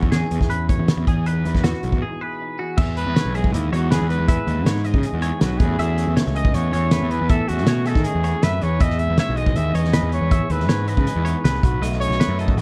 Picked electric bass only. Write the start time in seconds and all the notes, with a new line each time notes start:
Already playing: E2
0.12 E2
0.31 E2
0.41 E2
0.79 E2
0.97 E2
1.07 E2
1.45 E2
1.64 E2
1.83 B1
1.93 E2
2.78 E2
3.07 E2
3.25 B1
3.54 D#2
3.73 E2
4.01 E2
4.19 E2
4.47 D#2
4.65 G#2
4.94 C#3
5.13 E2
5.41 B1
5.59 E2
5.79 E2
6.08 E2
6.27 C#2
6.55 E2
6.73 E2
7.02 E2
7.21 E2
7.50 E2
7.67 B2
7.96 D#3
8.15 E2
8.43 F#2
8.63 E2
8.81 E2
9.10 E2
9.29 B1
9.56 D#2
9.74 E2
10.02 E2
10.21 E2
10.50 D#2
10.68 G#2
10.97 C#3
11.16 E2
11.44 C2
11.63 B1
11.81 B1
12.10 B1
12.28 F#2
12.56 A1